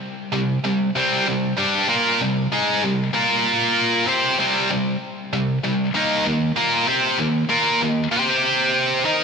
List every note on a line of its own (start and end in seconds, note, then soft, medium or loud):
0.33 0.58 C3 medium
0.33 0.58 G3 medium
0.65 0.89 C3 medium
0.65 0.90 G3 medium
0.96 1.26 C3 medium
0.96 1.26 G3 medium
0.96 1.27 C4 loud
1.27 1.52 C3 medium
1.27 1.52 G3 medium
1.58 1.88 G3 medium
1.58 1.89 D4 loud
1.58 1.89 G4 loud
1.89 2.19 A#3 medium
1.89 2.20 F4 medium
1.89 2.20 A#4 medium
2.21 2.46 C3 medium
2.21 2.46 G3 medium
2.52 2.82 G#3 loud
2.52 2.83 D#4 loud
2.52 2.83 G#4 loud
2.83 3.08 C3 medium
2.83 3.08 G3 medium
3.13 4.07 A#3 medium
3.13 4.07 F4 medium
3.13 4.07 A#4 loud
4.07 4.38 C4 loud
4.07 4.38 G4 loud
4.07 4.39 C5 loud
4.39 4.69 C3 medium
4.39 4.70 G3 loud
4.39 4.70 C4 medium
4.70 4.95 C3 medium
4.70 4.95 G3 medium
5.33 5.58 C3 medium
5.33 5.58 G3 medium
5.64 5.89 C3 medium
5.64 5.89 G3 medium
5.94 6.25 D#3 medium
5.94 6.25 A#3 loud
5.94 6.25 D#4 loud
6.26 6.51 D#3 medium
6.26 6.51 A#3 medium
6.57 6.87 A#3 medium
6.57 6.87 F4 loud
6.57 6.87 A#4 loud
6.87 7.18 C4 medium
6.87 7.18 G4 medium
6.87 7.19 C5 medium
7.18 7.44 D#3 medium
7.18 7.44 A#3 medium
7.49 7.80 A#3 medium
7.49 7.80 F4 loud
7.49 7.80 A#4 loud
7.81 8.06 D#3 medium
7.81 8.06 A#3 medium
8.11 9.04 C4 medium
8.11 9.04 G4 loud
8.11 9.05 C5 loud
9.05 9.24 D#4 medium
9.05 9.24 A#4 loud
9.05 9.24 D#5 loud